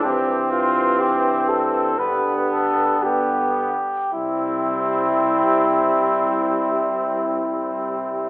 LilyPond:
<<
  \new Staff \with { instrumentName = "Cornet" } { \time 4/4 \key c \major \tempo 4 = 57 g'8 f'8 g'8 a'8 b'8 a'8 g'4 | e'1 | }
  \new Staff \with { instrumentName = "French horn" } { \time 4/4 \key c \major c'2 g'4 b8 r8 | g1 | }
  \new Staff \with { instrumentName = "Trumpet" } { \time 4/4 \key c \major c'2 b4 b8 r8 | c'1 | }
  \new Staff \with { instrumentName = "Trombone" } { \clef bass \time 4/4 \key c \major e2 d4 d8 r8 | c1 | }
  \new Staff \with { instrumentName = "Bass trombone" } { \clef bass \time 4/4 \key c \major g,2 g,4. r8 | c,1 | }
>>